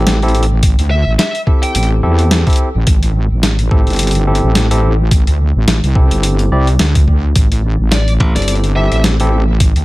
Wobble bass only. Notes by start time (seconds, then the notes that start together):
Already playing: A1
0.78 D2
1.06 A1
1.75 A1
2.03 E2
2.75 A1
2.87 A1
3.31 A1
3.71 A1
3.87 G1
4.44 A1
5.27 D2
5.56 A1
5.67 A1
5.83 C2
6.11 G1
6.51 C2
6.80 D2
7.36 A1
7.80 A1
8.35 G1
8.92 A1
9.76 D2